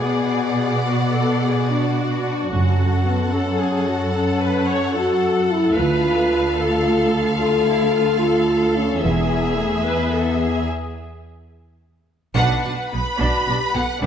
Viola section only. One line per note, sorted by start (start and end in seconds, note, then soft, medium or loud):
0.00 0.82 G#4 soft
0.87 1.14 F#4 soft
1.14 1.41 A4 soft
1.42 1.69 G#4 soft
1.68 3.33 F#4 medium
3.33 3.60 A4 soft
3.59 3.87 G#4 soft
3.86 4.14 F#4 soft
4.14 4.41 A4 soft
4.42 4.69 B4 soft
4.66 4.95 C#5 medium
4.93 5.74 A4 medium
5.75 6.57 B4 medium
6.56 7.39 A4 medium
7.39 7.66 F4 soft
7.67 7.94 E4 soft
7.93 8.21 F4 soft
8.22 9.03 A4 medium
9.03 9.85 G#4 medium
9.85 10.12 B4 soft
10.12 10.40 A4 soft
10.40 10.68 G#4 soft
12.35 12.62 D4 medium
12.35 13.98 B4 medium
12.64 12.72 D4 soft
12.93 13.01 B3 soft
13.18 13.45 D4 medium
13.48 13.56 D4 soft
13.75 13.83 B3 soft
14.03 14.06 D4 soft
14.03 14.06 A4 soft